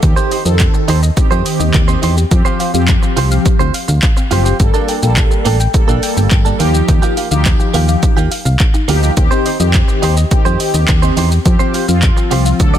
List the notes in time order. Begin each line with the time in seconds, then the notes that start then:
0.02 D#2 D#3 C4 G4, muted clean electric guitar stroke, kick, closed hi-hat, shaker
0.16 C4 D#4 G4 C5, shaker
0.31 D#4 G4 C5 D#5, open hi-hat, shaker
0.45 F2 D#3 C4 A4 D#5, muted clean electric guitar stroke, shaker
0.60 kick, clap, closed hi-hat, shaker
0.74 muted clean electric guitar stroke, shaker
0.88 D#2 D#4 G4 C5 D#5, open hi-hat, shaker
1.02 D#5, muted clean electric guitar stroke, shaker
1.16 D#3 C4 G4, muted clean electric guitar stroke, kick, closed hi-hat, shaker
1.31 F2 C4 D#4 G4 C5, shaker
1.45 D#5, muted clean electric guitar stroke, open hi-hat, shaker
1.59 D#2 D#5, muted clean electric guitar stroke, shaker
1.74 D#2 D#5, muted clean electric guitar stroke, kick, clap, closed hi-hat, shaker
1.88 C4 D#4 G4 C5, shaker
2.02 E2 D#4 G4 C5, open hi-hat, shaker
2.17 G4, muted clean electric guitar stroke, shaker
2.31 F2 F3 C4 G4, muted clean electric guitar stroke, kick, closed hi-hat, shaker
2.45 C4 F4 G4 C5, shaker
2.59 F4 G4 C5 F5, open hi-hat, shaker
2.74 F2 F3 C4 G4 F5, shaker
2.88 kick, clap, closed hi-hat, shaker
3.02 muted clean electric guitar stroke, shaker
3.16 C2 F4 G4 C5 F5, open hi-hat, shaker
3.31 F5, muted clean electric guitar stroke, shaker
3.45 muted clean electric guitar stroke, kick, closed hi-hat, shaker
3.59 D2 C4 F4 G4 C5, shaker
3.74 F5, muted clean electric guitar stroke, open hi-hat, shaker
3.88 D2 F5, muted clean electric guitar stroke, shaker
4.02 F5, muted clean electric guitar stroke, kick, clap, closed hi-hat, shaker
4.17 C4, muted clean electric guitar stroke, shaker
4.31 F#1 F3 C4 F4 G4 C5, open hi-hat, shaker
4.45 F4 G4 C5, shaker
4.60 G1 G3 A#3 A4, kick, closed hi-hat, shaker
4.74 A#3 D4 A4, shaker
4.88 A#3 D4 A4 G5, open hi-hat, shaker
5.02 A#1 G3 A#3 A4 G5, muted clean electric guitar stroke, shaker
5.17 kick, clap, closed hi-hat, shaker
5.31 muted clean electric guitar stroke, shaker
5.45 A1 A#3 D4 A4 G5, open hi-hat, shaker
5.59 G5, muted clean electric guitar stroke, shaker
5.74 G3 A#3 A4, muted clean electric guitar stroke, kick, closed hi-hat, shaker
5.88 A#1 A#3 D4 A4, shaker
6.02 G5, muted clean electric guitar stroke, open hi-hat, shaker
6.17 G1 G5, muted clean electric guitar stroke, shaker
6.31 G1 G5, muted clean electric guitar stroke, kick, clap, closed hi-hat, shaker
6.45 A#3 D4 A4, shaker
6.59 D#2 F3 A#3 D#4 F4 G4, open hi-hat, shaker
6.74 G4, muted clean electric guitar stroke, shaker
6.88 D#2 F3, muted clean electric guitar stroke, kick, closed hi-hat, shaker
7.02 A#3 D#4 F4 G4, shaker
7.17 A#3 F4 G4 F5, open hi-hat, shaker
7.31 D2 F3 D#4 G4 F5, muted clean electric guitar stroke, shaker
7.45 kick, clap, closed hi-hat, shaker
7.60 muted clean electric guitar stroke, shaker
7.74 D#2 A#3 F4 G4 F5, open hi-hat, shaker
7.88 F5, muted clean electric guitar stroke, shaker
8.03 muted clean electric guitar stroke, kick, closed hi-hat, shaker
8.17 D#2 A#3 D#4 F4 G4, shaker
8.31 F5, muted clean electric guitar stroke, open hi-hat, shaker
8.45 C2 F5, muted clean electric guitar stroke, shaker
8.60 F5, muted clean electric guitar stroke, kick, clap, closed hi-hat, shaker
8.74 D#4, muted clean electric guitar stroke, shaker
8.88 D2 F3 A#3 D#4 F4 G4, open hi-hat, shaker
9.02 A#3 F4 G4, shaker
9.17 D#2 D#3 C4 G4, muted clean electric guitar stroke, kick, closed hi-hat, shaker
9.31 C4 D#4 G4 C5, shaker
9.45 D#4 G4 C5 D#5, open hi-hat, shaker
9.60 F2 D#3 C4 G4 D#5, shaker
9.74 kick, clap, closed hi-hat, shaker
9.88 muted clean electric guitar stroke, shaker
10.02 D#2 D#4 G4 C5 D#5, open hi-hat, shaker
10.17 D#5, muted clean electric guitar stroke, shaker
10.31 D#3 C4 G4, muted clean electric guitar stroke, kick, closed hi-hat, shaker
10.45 F2 C4 D#4 G4 C5, shaker
10.60 D#5, muted clean electric guitar stroke, open hi-hat, shaker
10.74 D#2 D#5, muted clean electric guitar stroke, shaker
10.88 D#2 D#5, muted clean electric guitar stroke, kick, clap, closed hi-hat, shaker
11.02 C4 D#4 G4 C5, shaker
11.16 E2 D#4 G4 C5, open hi-hat, shaker
11.31 G4, muted clean electric guitar stroke, shaker
11.45 F2 F3 C4 G4, muted clean electric guitar stroke, kick, closed hi-hat, shaker
11.59 C4 F4 G4 C5, shaker
11.74 F4 G4 C5 F5, open hi-hat, shaker
11.88 F2 F3 C4 F4 F5, shaker
12.02 kick, clap, closed hi-hat, shaker
12.17 muted clean electric guitar stroke, shaker
12.31 C2 F4 G4 C5 F5, open hi-hat, shaker
12.45 F5, muted clean electric guitar stroke, shaker
12.59 D2 F#3 D4 A4, muted clean electric guitar stroke, kick, closed hi-hat, shaker
12.74 D4 F#4 A4 D5, shaker